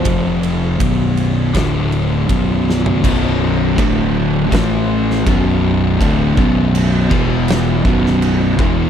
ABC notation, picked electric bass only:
X:1
M:4/4
L:1/8
Q:1/4=81
K:Bm
V:1 name="Picked electric bass" clef=bass
=F,,,2 B,,,,2 D,,,2 B,,,,2 | B,,,,2 D,,,2 A,,,2 B,,,,2 | D,,, B,,,,2 E,,,2 B,,,,2 E,,, |]